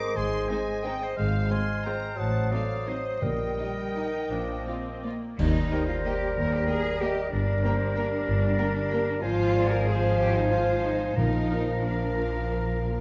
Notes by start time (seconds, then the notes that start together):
Already playing: G#3 A#4 C5 A#5 D6 D#6
0.16 G#1 G#2 G#4 G#5 C6
0.49 G#3 C4 D#4 C5 D#5 G#5
0.84 G#3 C4 D#4 C5 D#5 G5
1.01 C5 D#5
1.16 G#1 G#2 G#3 G#4 C5 F5 F6
1.48 G#3 C4 F4 C5 G#5 C6
1.52 G#4
1.84 G#3 C4 F4 C5 G5 A#5
2.16 A1 A2 F#3 F#5 A5 D#6
2.52 F#3 C4 D#4 A4 C5 D5 F5
2.87 F#3 C4 D#4 C5 D#5
3.21 A#1 A#2 G3 A#4 D#5 G5
3.58 G3 D#4 D#5
3.95 D#4 D#5
4.30 A#1 A#2 F3 D4 D6
4.66 C4 F4 D5
5.04 A#3 F4 D5
5.38 D#2 D#3 G3 D#4 A#4 A#5, concert bass drum, crash
5.70 A#3 G4 A#4 C5 D#5 G5
5.88 F4
6.05 A#3 G4 A#4 D#5 G5
6.36 D#2 A#4
6.52 G4
6.66 A#3 G4 G#4 A#4 D#5 G5
7.00 A#3 G4 A#4 D#5 G5
7.31 G1 G3 D4 A#4 D5 A#5
7.63 A#3 G4 A#4 C5 G5
7.96 A#3 G4 A#4 G5
8.28 G1 D5
8.58 A#3 G4 A#4 G5
8.91 A#3 G4 A#4 G5
9.21 G#1 F3 F4 C5 F5 G#5
9.54 G#3 F4 C5 D5
9.70 A#4
9.87 F3 G#3 F4 G#4 C5 F5
10.17 G4 C5
10.34 D#4
10.50 F3 G#3 F4 C5 F5
10.84 G#3 D#4 F4 C5
11.16 A#1 A#2 F3 D#4 A#4 F5 A#5
11.50 A#3 F4 A#4
11.84 F3 A#3 D4 F4 A#4 F5
12.50 A#3 F4 A#4
12.85 A#3 F4 A#4